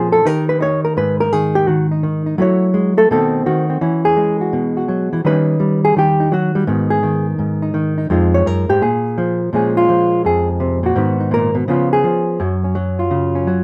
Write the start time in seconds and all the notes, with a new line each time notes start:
Already playing: A#2 F3 C4 C#4 G#4
0.12 A4
0.25 D#3 D#4 G4 A#4
0.49 B4
0.61 D#4 C#5
0.85 A#4
0.97 G#2 B4
1.20 A#4
1.33 D#3 G#4
1.55 G4
1.68 D#3 F#4
1.91 D#4
2.03 D#3
2.26 D#4
2.38 F#3 A3 E4 F#4 C#5
2.74 G#3
2.97 A3 A4
3.11 B2 D#3 A3 C4 A4
3.46 D#3 F#4
3.70 C4
3.81 E3 C#4
4.05 G#4
4.17 G#3
4.41 F#4
4.53 B2
4.77 F#4
4.88 F#3
5.13 E3
5.25 D#3 G3 C#4 D#4 B4
5.60 G3
5.85 G#4
5.96 D#3 G4
6.20 D#4
6.32 F#3 F#4
6.55 G3
6.67 G#2 D#3 B3
6.90 G#4
7.03 D#3
7.39 G#2
7.62 D#4
7.74 D#3
7.98 D#4
8.10 F2 G#3 D#4 F4
8.34 C#5
8.46 F#2 A#4
8.69 G#2 G4
8.81 A#2 G#4
9.18 F3
9.53 A#2 F3 G#3 C#4 G#4
9.77 F4
9.89 F3
10.25 F2 G#4
10.60 C3
10.83 A#2 F#4
10.96 G#2 D#3 B3 D#4
11.20 D#4
11.31 A#2 A#4
11.55 B2
11.68 C#3 F3 B3 C#4 F4
11.93 G#4
12.04 F3
12.40 F#2 F#3
12.64 C#4
12.75 F#3
12.99 F4
13.11 C#3
13.35 C#4
13.47 F#3